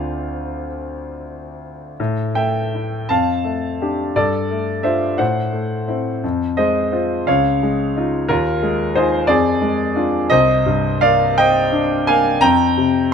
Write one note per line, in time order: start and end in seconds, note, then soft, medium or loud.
0.00 1.93 D2 soft
0.00 1.93 A3 soft
0.00 1.94 C4 soft
0.00 1.94 D4 soft
0.00 1.95 E4 soft
0.00 0.66 F4 soft
0.00 0.66 C5 soft
0.00 0.70 F5 medium
2.00 3.07 A2 soft
2.35 2.95 A3 soft
2.35 3.06 E5 soft
2.35 3.09 G5 medium
2.75 3.07 E4 soft
3.09 4.13 F2 soft
3.09 4.12 F5 soft
3.09 4.16 A5 medium
3.44 4.02 A3 soft
3.82 4.13 D4 soft
3.82 4.13 G4 soft
4.16 5.17 G2 soft
4.16 4.82 A4 soft
4.16 4.85 D5 medium
4.51 5.06 A3 soft
4.83 5.16 D4 soft
4.83 5.16 F4 soft
4.83 5.17 C5 soft
4.83 5.19 E5 medium
5.18 6.20 A2 soft
5.18 6.19 C5 soft
5.18 6.23 F#5 medium
5.53 6.09 A3 soft
5.88 6.20 C4 soft
5.88 6.20 E4 soft
6.24 7.24 F2 soft
6.57 7.13 G#3 soft
6.57 7.23 C5 soft
6.57 7.26 D#5 medium
6.92 7.23 C4 soft
6.92 7.24 F4 soft
7.27 8.27 C#2 soft
7.27 8.25 C#5 soft
7.27 8.29 F5 medium
7.63 8.16 G#3 soft
7.96 8.26 D#4 soft
7.96 8.27 F4 soft
8.28 9.26 D#2 soft
8.28 8.92 F4 medium
8.28 8.95 A#4 medium
8.63 9.16 G#3 soft
8.95 9.26 D#4 soft
8.95 9.27 F4 soft
8.95 9.27 G#4 medium
8.95 9.29 C5 medium
9.27 10.28 F2 soft
9.27 10.28 G#4 medium
9.27 10.31 D5 medium
9.62 10.17 G#3 soft
9.96 10.27 D4 soft
9.96 10.28 F4 soft
10.30 12.37 C2 medium
10.30 10.98 C5 medium
10.30 11.02 D#5 medium
10.66 11.23 G2 soft
11.01 11.59 A#3 soft
11.01 11.35 D5 medium
11.01 11.37 F5 medium
11.38 11.94 C4 soft
11.38 12.04 D#5 medium
11.38 12.07 G5 medium
11.72 12.28 D4 soft
12.07 12.42 A#3 soft
12.07 12.40 F5 medium
12.07 12.41 G#5 medium
12.41 13.14 F2 medium
12.41 13.07 G5 medium
12.41 13.11 A#5 medium
12.78 13.14 C3 soft